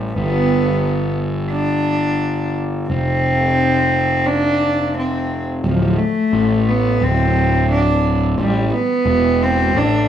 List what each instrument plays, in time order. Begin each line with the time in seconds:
Already playing: picked electric bass A1
0.12 picked electric bass G1, cello B3
1.52 cello D4
2.90 picked electric bass F1, cello C4
4.26 cello D4
4.98 cello C4
5.64 picked electric bass D1, cello F3
5.99 cello A3
6.33 picked electric bass A1
6.69 cello B3
7.01 picked electric bass D1, cello C4
7.72 cello D4
8.38 picked electric bass A1, cello G3
8.74 cello B3
9.05 picked electric bass E1
9.43 cello C4
9.75 picked electric bass A1, cello D4